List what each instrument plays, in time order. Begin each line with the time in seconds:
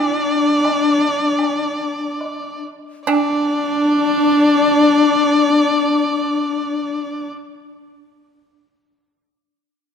Already playing: pipa D4, horsehead fiddle D4, xiao D4, erhu D5
0.65 high woodblock, low woodblock
1.39 high woodblock
2.21 low woodblock
3.07 pipa D4, horsehead fiddle D4, xiao D4, erhu D5, high woodblock
5.34 pipa C#4
5.73 pipa C4
6.12 pipa B3